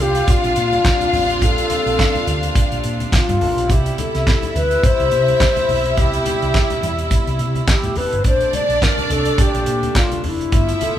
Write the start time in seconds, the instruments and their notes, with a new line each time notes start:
Already playing: string section C3 A#3 C4 D4, violin section F4 F5
0.00 fingered electric bass C2, alto flute G4, closed hi-hat
0.15 closed hi-hat
0.27 alto flute F4, kick, closed hi-hat, high conga
0.44 fingered electric bass A#1, closed hi-hat, muted conga
0.56 fingered electric bass A#2, closed hi-hat
0.72 closed hi-hat, high conga
0.85 kick, snare, clap
1.01 closed hi-hat, high conga
1.13 fingered electric bass A1, open hi-hat, high conga, low conga
1.30 closed hi-hat
1.41 fingered electric bass A#1, alto flute A4, kick, closed hi-hat, muted conga, low conga
1.58 closed hi-hat
1.70 closed hi-hat, high conga
1.86 fingered electric bass A#1, closed hi-hat
1.99 kick, snare, clap, muted conga
2.15 closed hi-hat, high conga
2.27 fingered electric bass D2, closed hi-hat, low conga
2.43 closed hi-hat
2.55 kick, closed hi-hat, muted conga, high conga
2.72 fingered electric bass A#1, closed hi-hat
2.84 fingered electric bass A#2, closed hi-hat
3.00 closed hi-hat, high conga
3.12 alto flute F4, kick, snare, clap
3.29 fingered electric bass G2, closed hi-hat, muted conga, high conga
3.40 fingered electric bass A1, violin section A3 A4, open hi-hat, high conga, low conga
3.48 violin section A#3 A#4
3.57 fingered electric bass A#1, violin section C4 C5, closed hi-hat
3.63 violin section D4 D5
3.69 fingered electric bass C2, string section B2 G3 E4, violin section E4 E5, alto flute G4, kick, closed hi-hat, muted conga, low conga
3.86 closed hi-hat
3.98 alto flute A4, closed hi-hat, high conga
4.15 fingered electric bass C2, snare, closed hi-hat
4.26 kick, snare, clap, muted conga
4.43 closed hi-hat, muted conga, high conga
4.55 fingered electric bass D2, alto flute B4, closed hi-hat, low conga
4.71 closed hi-hat
4.83 alto flute C5, kick, closed hi-hat, muted conga, high conga
4.99 fingered electric bass C2, closed hi-hat, muted conga
5.11 fingered electric bass C3, closed hi-hat
5.28 closed hi-hat, high conga
5.40 kick, snare, clap, muted conga
5.56 closed hi-hat, muted conga, high conga
5.69 fingered electric bass B1, open hi-hat, high conga, low conga
5.86 closed hi-hat
5.97 fingered electric bass C2, alto flute G4, kick, closed hi-hat, muted conga, low conga
6.13 closed hi-hat, muted conga
6.26 closed hi-hat, high conga
6.42 fingered electric bass C2, closed hi-hat
6.54 kick, snare, clap, muted conga
6.70 closed hi-hat, muted conga, high conga
6.83 fingered electric bass E2, closed hi-hat, low conga
6.99 closed hi-hat
7.10 kick, closed hi-hat, high conga
7.27 fingered electric bass C2, closed hi-hat
7.39 fingered electric bass C3, closed hi-hat
7.55 closed hi-hat, high conga
7.68 alto flute G4, kick, snare, clap
7.83 fingered electric bass A2, closed hi-hat, high conga
7.95 fingered electric bass F1, violin section G3 G4, alto flute B4, open hi-hat, high conga, low conga
8.04 violin section A3 A4
8.12 fingered electric bass G1, violin section B3 B4, closed hi-hat
8.19 violin section C4 C5
8.24 fingered electric bass A#1, string section C3 A3 A#3 D4, violin section D4 D5, alto flute C5, kick, closed hi-hat, low conga
8.41 closed hi-hat, muted conga
8.53 alto flute D5, closed hi-hat, high conga
8.69 fingered electric bass A#1, closed hi-hat
8.82 alto flute A#4, kick, snare, clap
8.98 closed hi-hat, high conga
9.10 fingered electric bass C2, alto flute A4, closed hi-hat, low conga
9.25 closed hi-hat
9.38 alto flute G4, kick, closed hi-hat, muted conga, high conga
9.54 fingered electric bass A#1, closed hi-hat, muted conga
9.66 fingered electric bass A#2, closed hi-hat
9.83 closed hi-hat, high conga
9.95 alto flute F4, kick, snare, clap, muted conga
10.12 closed hi-hat, muted conga, high conga
10.23 fingered electric bass F1, alto flute E4, open hi-hat, high conga, low conga
10.41 closed hi-hat
10.52 fingered electric bass G1, string section F3 B3 E4, violin section E4 E5, kick, closed hi-hat, muted conga, low conga
10.69 closed hi-hat
10.81 alto flute A4, closed hi-hat, high conga